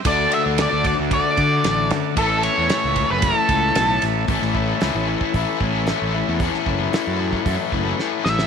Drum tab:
RD |x-x-x-x-x-x-x-x-|x-x-x-x-x-x-x-x-|----------------|----------------|
HH |----------------|----------------|o---o---o---o---|o---o---o-------|
SD |----o-------o-o-|----o-------o-o-|-o--o-------o---|-o--o-------o-oo|
BD |o-----o-o-o-----|o-----o-o-o-----|o-o----oo-o-----|o-o----oo-o-----|